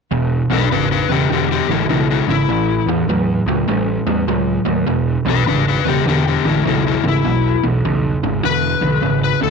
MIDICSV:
0, 0, Header, 1, 4, 480
1, 0, Start_track
1, 0, Tempo, 593472
1, 103, Time_signature, 4, 2, 24, 8
1, 7684, End_track
2, 0, Start_track
2, 0, Title_t, "Electric slide guitar"
2, 0, Program_c, 0, 29
2, 421, Note_on_c, 0, 62, 73
2, 430, Note_on_c, 0, 71, 81
2, 574, Note_off_c, 0, 71, 0
2, 578, Note_off_c, 0, 62, 0
2, 584, Note_on_c, 0, 71, 79
2, 588, Note_on_c, 0, 62, 66
2, 731, Note_off_c, 0, 62, 0
2, 735, Note_off_c, 0, 71, 0
2, 741, Note_on_c, 0, 62, 58
2, 745, Note_on_c, 0, 71, 66
2, 890, Note_off_c, 0, 62, 0
2, 898, Note_off_c, 0, 71, 0
2, 902, Note_on_c, 0, 59, 69
2, 904, Note_on_c, 0, 67, 70
2, 1050, Note_off_c, 0, 59, 0
2, 1057, Note_off_c, 0, 67, 0
2, 1068, Note_on_c, 0, 59, 70
2, 1075, Note_on_c, 0, 67, 77
2, 1213, Note_off_c, 0, 59, 0
2, 1219, Note_off_c, 0, 67, 0
2, 1225, Note_on_c, 0, 59, 66
2, 1229, Note_on_c, 0, 67, 76
2, 1372, Note_off_c, 0, 59, 0
2, 1379, Note_on_c, 0, 56, 73
2, 1380, Note_off_c, 0, 67, 0
2, 1380, Note_on_c, 0, 64, 81
2, 1520, Note_off_c, 0, 56, 0
2, 1527, Note_off_c, 0, 64, 0
2, 1530, Note_on_c, 0, 56, 72
2, 1536, Note_on_c, 0, 64, 79
2, 1684, Note_off_c, 0, 56, 0
2, 1694, Note_off_c, 0, 64, 0
2, 1704, Note_on_c, 0, 56, 71
2, 1710, Note_on_c, 0, 64, 73
2, 1851, Note_off_c, 0, 56, 0
2, 1853, Note_off_c, 0, 64, 0
2, 1863, Note_on_c, 0, 64, 87
2, 2328, Note_off_c, 0, 64, 0
2, 4280, Note_on_c, 0, 62, 79
2, 4285, Note_on_c, 0, 71, 91
2, 4418, Note_off_c, 0, 62, 0
2, 4427, Note_on_c, 0, 62, 69
2, 4428, Note_off_c, 0, 71, 0
2, 4437, Note_on_c, 0, 71, 84
2, 4575, Note_off_c, 0, 62, 0
2, 4586, Note_off_c, 0, 71, 0
2, 4597, Note_on_c, 0, 62, 64
2, 4602, Note_on_c, 0, 71, 77
2, 4740, Note_off_c, 0, 62, 0
2, 4748, Note_off_c, 0, 71, 0
2, 4753, Note_on_c, 0, 59, 68
2, 4758, Note_on_c, 0, 67, 83
2, 4898, Note_off_c, 0, 59, 0
2, 4907, Note_off_c, 0, 67, 0
2, 4920, Note_on_c, 0, 59, 82
2, 4923, Note_on_c, 0, 67, 78
2, 5062, Note_off_c, 0, 59, 0
2, 5068, Note_off_c, 0, 67, 0
2, 5076, Note_on_c, 0, 59, 68
2, 5081, Note_on_c, 0, 67, 77
2, 5220, Note_off_c, 0, 59, 0
2, 5228, Note_off_c, 0, 67, 0
2, 5231, Note_on_c, 0, 56, 69
2, 5241, Note_on_c, 0, 64, 85
2, 5377, Note_off_c, 0, 56, 0
2, 5389, Note_off_c, 0, 64, 0
2, 5395, Note_on_c, 0, 56, 80
2, 5400, Note_on_c, 0, 64, 82
2, 5539, Note_off_c, 0, 56, 0
2, 5548, Note_off_c, 0, 64, 0
2, 5554, Note_on_c, 0, 56, 66
2, 5565, Note_on_c, 0, 64, 78
2, 5699, Note_off_c, 0, 56, 0
2, 5711, Note_off_c, 0, 64, 0
2, 5729, Note_on_c, 0, 64, 83
2, 6184, Note_off_c, 0, 64, 0
2, 6836, Note_on_c, 0, 71, 101
2, 7452, Note_off_c, 0, 71, 0
2, 7474, Note_on_c, 0, 71, 76
2, 7625, Note_off_c, 0, 71, 0
2, 7630, Note_on_c, 0, 69, 83
2, 7684, Note_off_c, 0, 69, 0
2, 7684, End_track
3, 0, Start_track
3, 0, Title_t, "Overdriven electric guitar"
3, 0, Program_c, 1, 29
3, 91, Note_on_c, 1, 40, 78
3, 96, Note_on_c, 1, 47, 82
3, 376, Note_off_c, 1, 40, 0
3, 379, Note_off_c, 1, 47, 0
3, 402, Note_on_c, 1, 40, 72
3, 408, Note_on_c, 1, 47, 82
3, 559, Note_off_c, 1, 40, 0
3, 562, Note_off_c, 1, 47, 0
3, 580, Note_on_c, 1, 40, 70
3, 585, Note_on_c, 1, 49, 83
3, 860, Note_off_c, 1, 40, 0
3, 863, Note_off_c, 1, 49, 0
3, 889, Note_on_c, 1, 40, 65
3, 892, Note_on_c, 1, 49, 73
3, 1043, Note_off_c, 1, 40, 0
3, 1044, Note_off_c, 1, 49, 0
3, 1053, Note_on_c, 1, 40, 81
3, 1056, Note_on_c, 1, 50, 85
3, 1337, Note_off_c, 1, 40, 0
3, 1338, Note_off_c, 1, 50, 0
3, 1368, Note_on_c, 1, 50, 69
3, 1369, Note_on_c, 1, 40, 61
3, 1522, Note_off_c, 1, 40, 0
3, 1522, Note_off_c, 1, 50, 0
3, 1532, Note_on_c, 1, 40, 75
3, 1537, Note_on_c, 1, 49, 87
3, 1816, Note_off_c, 1, 40, 0
3, 1819, Note_off_c, 1, 49, 0
3, 1847, Note_on_c, 1, 40, 75
3, 1850, Note_on_c, 1, 49, 77
3, 2001, Note_off_c, 1, 40, 0
3, 2003, Note_off_c, 1, 49, 0
3, 2015, Note_on_c, 1, 45, 69
3, 2019, Note_on_c, 1, 52, 76
3, 2298, Note_off_c, 1, 45, 0
3, 2300, Note_off_c, 1, 52, 0
3, 2333, Note_on_c, 1, 45, 70
3, 2337, Note_on_c, 1, 52, 79
3, 2485, Note_off_c, 1, 45, 0
3, 2487, Note_off_c, 1, 52, 0
3, 2501, Note_on_c, 1, 45, 73
3, 2505, Note_on_c, 1, 54, 88
3, 2781, Note_off_c, 1, 45, 0
3, 2783, Note_off_c, 1, 54, 0
3, 2813, Note_on_c, 1, 45, 74
3, 2819, Note_on_c, 1, 54, 78
3, 2965, Note_off_c, 1, 45, 0
3, 2968, Note_off_c, 1, 54, 0
3, 2975, Note_on_c, 1, 45, 86
3, 2981, Note_on_c, 1, 55, 94
3, 3258, Note_off_c, 1, 45, 0
3, 3262, Note_off_c, 1, 55, 0
3, 3289, Note_on_c, 1, 45, 66
3, 3292, Note_on_c, 1, 55, 69
3, 3443, Note_off_c, 1, 45, 0
3, 3445, Note_off_c, 1, 55, 0
3, 3463, Note_on_c, 1, 45, 76
3, 3463, Note_on_c, 1, 54, 91
3, 3743, Note_off_c, 1, 45, 0
3, 3743, Note_off_c, 1, 54, 0
3, 3763, Note_on_c, 1, 45, 74
3, 3768, Note_on_c, 1, 54, 79
3, 3920, Note_off_c, 1, 45, 0
3, 3923, Note_off_c, 1, 54, 0
3, 3936, Note_on_c, 1, 40, 75
3, 3943, Note_on_c, 1, 47, 88
3, 4220, Note_off_c, 1, 40, 0
3, 4223, Note_off_c, 1, 47, 0
3, 4253, Note_on_c, 1, 40, 71
3, 4258, Note_on_c, 1, 47, 77
3, 4406, Note_off_c, 1, 40, 0
3, 4409, Note_off_c, 1, 47, 0
3, 4424, Note_on_c, 1, 40, 72
3, 4429, Note_on_c, 1, 49, 81
3, 4705, Note_off_c, 1, 40, 0
3, 4707, Note_off_c, 1, 49, 0
3, 4735, Note_on_c, 1, 40, 68
3, 4738, Note_on_c, 1, 49, 72
3, 4887, Note_off_c, 1, 40, 0
3, 4889, Note_off_c, 1, 49, 0
3, 4899, Note_on_c, 1, 40, 78
3, 4904, Note_on_c, 1, 50, 83
3, 5182, Note_off_c, 1, 40, 0
3, 5184, Note_off_c, 1, 50, 0
3, 5218, Note_on_c, 1, 40, 66
3, 5221, Note_on_c, 1, 50, 69
3, 5369, Note_off_c, 1, 40, 0
3, 5371, Note_off_c, 1, 50, 0
3, 5381, Note_on_c, 1, 40, 88
3, 5383, Note_on_c, 1, 49, 90
3, 5663, Note_off_c, 1, 40, 0
3, 5665, Note_off_c, 1, 49, 0
3, 5692, Note_on_c, 1, 40, 68
3, 5695, Note_on_c, 1, 49, 79
3, 5846, Note_off_c, 1, 40, 0
3, 5848, Note_off_c, 1, 49, 0
3, 5861, Note_on_c, 1, 40, 73
3, 5864, Note_on_c, 1, 47, 77
3, 6144, Note_off_c, 1, 40, 0
3, 6145, Note_off_c, 1, 47, 0
3, 6175, Note_on_c, 1, 40, 69
3, 6176, Note_on_c, 1, 47, 78
3, 6328, Note_off_c, 1, 40, 0
3, 6329, Note_off_c, 1, 47, 0
3, 6350, Note_on_c, 1, 40, 79
3, 6352, Note_on_c, 1, 49, 73
3, 6628, Note_off_c, 1, 40, 0
3, 6629, Note_off_c, 1, 49, 0
3, 6662, Note_on_c, 1, 40, 72
3, 6665, Note_on_c, 1, 49, 71
3, 6812, Note_off_c, 1, 40, 0
3, 6813, Note_off_c, 1, 49, 0
3, 6823, Note_on_c, 1, 40, 77
3, 6825, Note_on_c, 1, 50, 89
3, 7104, Note_off_c, 1, 40, 0
3, 7106, Note_off_c, 1, 50, 0
3, 7129, Note_on_c, 1, 40, 62
3, 7137, Note_on_c, 1, 50, 70
3, 7285, Note_off_c, 1, 40, 0
3, 7289, Note_off_c, 1, 50, 0
3, 7299, Note_on_c, 1, 40, 72
3, 7303, Note_on_c, 1, 49, 80
3, 7583, Note_off_c, 1, 40, 0
3, 7584, Note_off_c, 1, 49, 0
3, 7613, Note_on_c, 1, 40, 75
3, 7614, Note_on_c, 1, 49, 75
3, 7684, Note_off_c, 1, 40, 0
3, 7684, Note_off_c, 1, 49, 0
3, 7684, End_track
4, 0, Start_track
4, 0, Title_t, "Picked electric bass"
4, 0, Program_c, 2, 34
4, 95, Note_on_c, 2, 28, 91
4, 339, Note_off_c, 2, 28, 0
4, 403, Note_on_c, 2, 35, 80
4, 538, Note_off_c, 2, 35, 0
4, 571, Note_on_c, 2, 32, 80
4, 817, Note_off_c, 2, 32, 0
4, 884, Note_on_c, 2, 28, 82
4, 1019, Note_off_c, 2, 28, 0
4, 1048, Note_on_c, 2, 28, 82
4, 1295, Note_off_c, 2, 28, 0
4, 1358, Note_on_c, 2, 33, 80
4, 1495, Note_off_c, 2, 33, 0
4, 1527, Note_on_c, 2, 35, 80
4, 1774, Note_off_c, 2, 35, 0
4, 1839, Note_on_c, 2, 32, 77
4, 1975, Note_off_c, 2, 32, 0
4, 2008, Note_on_c, 2, 33, 92
4, 2255, Note_off_c, 2, 33, 0
4, 2315, Note_on_c, 2, 40, 84
4, 2453, Note_off_c, 2, 40, 0
4, 2489, Note_on_c, 2, 40, 84
4, 2736, Note_off_c, 2, 40, 0
4, 2799, Note_on_c, 2, 37, 81
4, 2936, Note_off_c, 2, 37, 0
4, 2972, Note_on_c, 2, 33, 82
4, 3218, Note_off_c, 2, 33, 0
4, 3288, Note_on_c, 2, 40, 83
4, 3422, Note_off_c, 2, 40, 0
4, 3456, Note_on_c, 2, 37, 86
4, 3701, Note_off_c, 2, 37, 0
4, 3774, Note_on_c, 2, 39, 81
4, 3905, Note_off_c, 2, 39, 0
4, 3936, Note_on_c, 2, 28, 87
4, 4181, Note_off_c, 2, 28, 0
4, 4244, Note_on_c, 2, 35, 84
4, 4380, Note_off_c, 2, 35, 0
4, 4418, Note_on_c, 2, 32, 82
4, 4663, Note_off_c, 2, 32, 0
4, 4729, Note_on_c, 2, 28, 80
4, 4863, Note_off_c, 2, 28, 0
4, 4896, Note_on_c, 2, 28, 81
4, 5142, Note_off_c, 2, 28, 0
4, 5209, Note_on_c, 2, 33, 83
4, 5343, Note_off_c, 2, 33, 0
4, 5379, Note_on_c, 2, 35, 86
4, 5624, Note_off_c, 2, 35, 0
4, 5692, Note_on_c, 2, 32, 74
4, 5825, Note_off_c, 2, 32, 0
4, 5866, Note_on_c, 2, 35, 88
4, 6108, Note_off_c, 2, 35, 0
4, 6178, Note_on_c, 2, 35, 82
4, 6309, Note_off_c, 2, 35, 0
4, 6347, Note_on_c, 2, 35, 81
4, 6589, Note_off_c, 2, 35, 0
4, 6656, Note_on_c, 2, 32, 75
4, 6788, Note_off_c, 2, 32, 0
4, 6827, Note_on_c, 2, 28, 84
4, 7069, Note_off_c, 2, 28, 0
4, 7134, Note_on_c, 2, 35, 82
4, 7267, Note_off_c, 2, 35, 0
4, 7306, Note_on_c, 2, 32, 81
4, 7548, Note_off_c, 2, 32, 0
4, 7617, Note_on_c, 2, 38, 72
4, 7684, Note_off_c, 2, 38, 0
4, 7684, End_track
0, 0, End_of_file